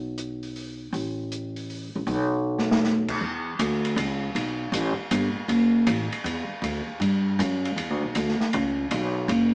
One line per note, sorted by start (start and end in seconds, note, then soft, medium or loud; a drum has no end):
0.00 0.89 B1 medium
0.18 closed hi-hat soft
0.43 open hi-hat soft
0.56 open hi-hat soft
0.93 1.90 A1 medium
0.93 open hi-hat soft
1.32 closed hi-hat soft
1.56 open hi-hat soft
1.70 open hi-hat soft
1.95 2.06 A1 medium
2.07 3.17 B1 medium
2.07 open hi-hat soft
2.59 snare soft
2.71 snare medium
2.84 snare soft
3.08 kick medium
3.08 crash medium
3.21 3.58 E2 medium
3.59 3.96 D2 medium
3.59 hi-hat pedal medium
3.59 ride medium
3.85 ride soft
3.96 4.34 C#2 medium
3.96 ride medium
4.35 4.71 B1 medium
4.35 ride medium
4.72 4.96 A1 medium
4.72 hi-hat pedal medium
4.72 ride medium
4.98 muted upright bass stroke soft
5.11 5.34 G1 medium
5.11 hi-hat pedal medium
5.11 ride medium
5.35 muted upright bass stroke soft
5.48 5.86 F#1 medium
5.48 ride medium
5.87 6.10 A1 medium
5.87 hi-hat pedal soft
5.87 ride medium
6.12 muted upright bass stroke soft
6.12 ride soft
6.24 6.48 E2 medium
6.24 ride medium
6.49 muted upright bass stroke soft
6.62 6.86 D2 medium
6.62 ride medium
6.87 muted upright bass stroke soft
7.00 7.37 G2 medium
7.00 ride medium
7.39 7.76 F#2 medium
7.39 hi-hat pedal soft
7.39 ride medium
7.65 ride soft
7.76 7.90 E2 medium
7.76 ride medium
7.90 8.02 D2 medium
8.03 8.14 B1 medium
8.15 8.39 D2 medium
8.15 hi-hat pedal soft
8.15 ride medium
8.28 snare soft
8.40 muted upright bass stroke soft
8.40 snare soft
8.53 8.90 C#2 medium
8.53 ride medium
8.91 9.28 B1 medium
8.91 ride medium
9.28 9.54 F#1 medium
9.28 ride medium